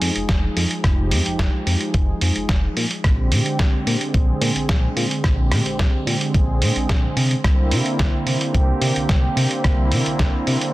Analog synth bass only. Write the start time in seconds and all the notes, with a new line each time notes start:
0.01 F2
0.15 F1
0.29 F1
0.57 F2
0.84 F1
1.11 F2
1.26 F1
1.39 F1
1.67 F2
1.94 F1
2.22 F2
2.36 F1
2.49 F1
2.77 A#2
3.04 A#1
3.31 A#2
3.59 A#1
3.87 A#2
4.14 A#1
4.41 A#2
4.56 A#1
4.69 A#1
4.97 A#2
5.24 A#1
5.51 A#2
5.66 A#1
5.79 A#1
6.06 A#2
6.34 A#1
6.62 A#2
6.76 A#1
6.89 A#1
7.17 C3
7.44 C2
7.72 C3
8.00 C2
8.26 C3
8.55 C2
8.81 C3
8.96 C2
9.10 C2
9.37 C3
9.65 C2
9.92 C3
10.06 C2
10.19 C2
10.47 C3